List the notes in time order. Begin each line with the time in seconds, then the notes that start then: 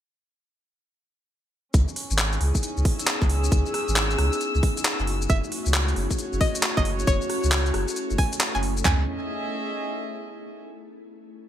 1.74 C#2 B3 C#4 D#4 E4 G#4, kick, closed hi-hat, shaker
1.88 shaker
1.96 open hi-hat
2.11 G#1, shaker
2.18 clap, closed hi-hat, shaker
2.33 closed hi-hat, shaker
2.37 C#2 G#4, open hi-hat
2.55 kick, closed hi-hat, shaker
2.63 closed hi-hat, shaker
2.77 C#2, shaker
2.85 kick, open hi-hat
2.96 E6, closed hi-hat, shaker
3.07 clap, closed hi-hat, shaker
3.22 C#2, kick, shaker
3.29 open hi-hat
3.44 shaker
3.52 C#2, kick, closed hi-hat, shaker
3.66 shaker
3.74 cross-stick, open hi-hat
3.88 G#1, shaker
3.96 clap, closed hi-hat, shaker
4.11 closed hi-hat, shaker
4.18 C#2, cross-stick, open hi-hat
4.33 closed hi-hat, shaker
4.41 closed hi-hat, shaker
4.55 C#2, shaker
4.63 kick, open hi-hat
4.77 closed hi-hat, shaker
4.85 clap, closed hi-hat, shaker
4.99 F#1, shaker
5.07 A3 C#4 E4 F#4, open hi-hat
5.22 shaker
5.30 F#1 E5, kick, closed hi-hat, shaker
5.44 shaker
5.52 open hi-hat
5.59 C#5
5.66 C#2, shaker
5.74 clap, closed hi-hat, shaker
5.88 closed hi-hat, shaker
5.96 F#1, open hi-hat
6.11 kick, closed hi-hat, shaker
6.19 closed hi-hat, shaker
6.33 F#1, shaker
6.41 D#5, kick, open hi-hat
6.55 closed hi-hat, shaker
6.63 clap, closed hi-hat, shaker
6.77 F#1 D#5, kick, shaker
6.85 A4, open hi-hat
6.99 shaker
7.07 F#1 C#5, kick, closed hi-hat, shaker
7.22 shaker
7.30 cross-stick, open hi-hat
7.44 C#2, shaker
7.52 clap, closed hi-hat, shaker
7.66 closed hi-hat, shaker
7.74 F#1, cross-stick, open hi-hat
7.88 closed hi-hat, shaker
7.96 closed hi-hat, shaker
8.11 F#1, shaker
8.18 G#5, kick, open hi-hat
8.33 closed hi-hat, shaker
8.41 clap, closed hi-hat, shaker
8.55 F#1 G#5, shaker
8.63 open hi-hat
8.77 shaker
8.85 C#2 C#4 G#5, kick, clap, floor tom
8.94 G#4
9.01 D#5
9.06 E5